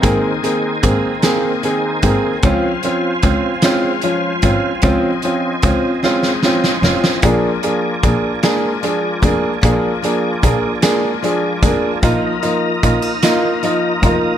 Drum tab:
HH |x-x-x-x-x-x-|x-x-x-x-x-x-|x-x-x-------|x-x-x-x-x-x-|
SD |------o-----|------o-----|------oooooo|------o-----|
BD |o---o-----o-|o---o-----o-|o---o-------|o---o-----o-|

HH |x-x-x-x-x-x-|x-x-x-x-x-x-|
SD |------o-----|------o-----|
BD |o---o-----o-|o---o-----o-|